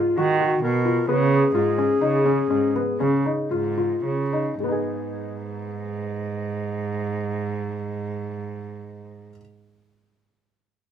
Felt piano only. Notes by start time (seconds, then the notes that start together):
Already playing: F4
0.17 F#4
0.40 F#4
0.85 F4
1.09 B3
1.55 F4
1.78 C#4
2.01 D#4
2.25 C#4
2.50 C#4
2.76 B3
3.00 C#4
3.26 D#4
3.51 F4
3.78 F4
4.33 D#4
4.60 G#3 B3
4.68 D#4 G#4